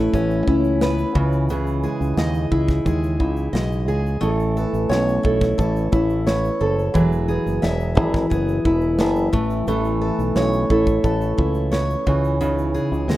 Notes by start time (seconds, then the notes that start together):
Already playing: E3 A3 B3 C#4 E4 A4 B4
0.13 A1 B3 C#4, kick, shaker
0.30 shaker
0.47 C#2 C#4 E4, kick
0.64 shaker
0.81 B3 B4, snare, shaker
0.98 shaker
1.15 C#2 C#3 E3, kick
1.32 shaker
1.49 C#3 E3 G#4, shaker
1.67 shaker
1.83 G#3 G#4, shaker
2.01 C#2, shaker
2.17 D#2 D#4 D#5, snare, shaker
2.34 shaker
2.51 C#2 E4 G#4, kick
2.68 kick, snare, shaker
2.85 D#2 G#3 G#4, kick, shaker
3.03 shaker
3.19 C#2 D#4 E4, kick
3.37 shaker
3.53 B1 G#3 D#5, snare, shaker
3.72 shaker
3.88 C#2 G#4, shaker
4.06 shaker
4.21 A1 E3 A3 A4, shaker
4.40 shaker
4.57 B3 A4, shaker
4.73 A1, shaker
4.89 B1 C#4 C#5, snare, shaker
5.08 shaker
5.23 B1 E4 A4, kick
5.41 kick, snare, shaker
5.58 A1 B3 A4, kick, shaker
5.76 shaker
5.92 A1 C#4 E4, kick, shaker
6.10 shaker
6.27 B3 C#5, snare, shaker
6.45 shaker
6.61 F#1 A4
6.79 shaker
6.94 E1 E3 F#3 G#4, kick, shaker
7.12 shaker
7.28 B3 G#4, shaker
7.46 F#1, shaker
7.62 E1 E4 E5, snare, shaker
7.80 shaker
7.95 G#1 E4 G#4, kick
8.14 kick, snare, shaker
8.30 F#1 B3 G#4, kick, shaker
8.48 shaker
8.65 E1 E4, kick
8.81 shaker
8.98 F#1 B3 E5, snare, shaker
9.16 shaker
9.33 A1 E3 A3, kick, shaker
9.50 shaker
9.67 A1 E3 A3 A4, shaker
9.85 shaker
10.01 B3 A4
10.19 B1, shaker
10.36 B1 C#4 C#5, snare, shaker
10.53 shaker
10.70 A1 E4 A4, kick
10.87 kick, shaker
11.04 A1 B3 A4, kick, shaker
11.21 shaker
11.38 C#2 C#4 E4, kick
11.54 shaker
11.72 B3 C#5, snare, shaker
11.90 shaker
12.07 C#2 C#3 E3, kick, shaker
12.24 shaker
12.41 C#3 E3 D#4, shaker
12.58 shaker
12.74 E3 G#4, shaker
12.92 C#2, shaker
13.08 D#2 G#3 D#5, snare, shaker